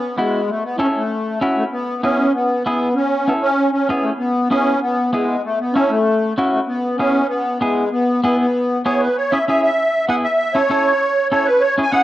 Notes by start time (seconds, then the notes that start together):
Already playing: B3
0.18 G#3 B3 E4 F#4
0.48 A3
0.64 B3
0.78 C#4 E4 A4
0.96 A3
1.41 C#4 E4 F#4
1.56 A3
1.72 B3
2.03 B3 C#4 E4 G#4
2.33 B3
2.65 B3 E4 G#4
2.95 C#4
3.25 B3 C#4 E4 A4
3.41 C#4
3.72 C#4
3.87 B3 C#4 E4 G#4
4.02 A3
4.18 B3
4.49 B3 C#4 E4 G#4
4.81 B3
5.12 G#3 B3 E4 G#4
5.44 A3
5.59 B3
5.74 C#4 E4 A4
5.89 A3
6.38 C#4 E4 F#4
6.52 A3
6.67 B3
6.97 B3 C#4 E4 G#4
7.28 B3
7.60 G#3 B3 E4 G#4
7.92 B3
8.22 B3 E4 G#4
8.38 B3
8.86 B3 E4 G#4 C#5
9.01 B4
9.17 C#5
9.31 C#4 E4 G#4 E5
9.46 C#4 E4 G#4 E5
9.62 E5
10.08 B3 E4 G#4 F#5
10.24 E5
10.54 C#4 E4 A4 C#5
10.70 C#4 E4 A4
11.30 C#4 E4 A4 C#5
11.45 B4
11.61 C#5
11.78 C#4 E4 G#4
11.82 G#5
11.91 C#4 E4 G#4 F#5